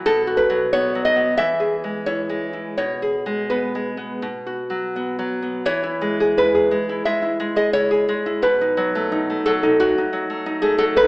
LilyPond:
\new Staff \with { instrumentName = "Nylon-string guitar" } { \time 4/4 \key e \major \tempo 4 = 87 << { a'8 b'8 cis''8 dis''8 e''4 cis''4 | cis''4 b'2~ b'8 r8 | cis''4 b'4 e''8. dis''16 cis''4 | b'4. a'8 fis'4~ fis'16 gis'16 a'16 b'16 | } \\ { \tuplet 3/2 { b,8 fis'8 fis8 b8 fis8 b8 e8 gis'8 gis8 e'8 gis8 e'8 } | \tuplet 3/2 { b,8 gis'8 gis8 b8 gis8 b8 b,8 fis'8 fis8 b8 fis8 b8 } | e16 e'16 gis16 gis'16 e'16 gis'16 gis16 e'16 gis16 e'16 gis16 gis'16 e'16 gis'16 gis16 e'16 | b,16 dis'16 fis16 a16 dis'16 a16 fis16 dis'16 fis16 dis'16 fis16 a16 dis'16 a16 fis16 dis'16 | } >> }